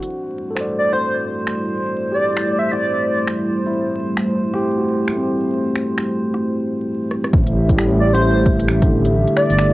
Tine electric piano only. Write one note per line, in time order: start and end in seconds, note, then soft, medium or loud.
0.00 0.30 D4 medium
0.00 0.30 F#4 medium
0.51 2.11 A4 soft
0.55 2.13 C5 soft
0.61 2.16 D5 soft
2.12 3.74 G4 soft
3.66 5.26 E4 medium
4.55 6.15 G4 medium
4.78 6.38 F#4 soft
5.12 6.75 A3 soft
5.17 6.78 C4 soft
7.77 9.39 G3 medium
8.85 9.73 D3 medium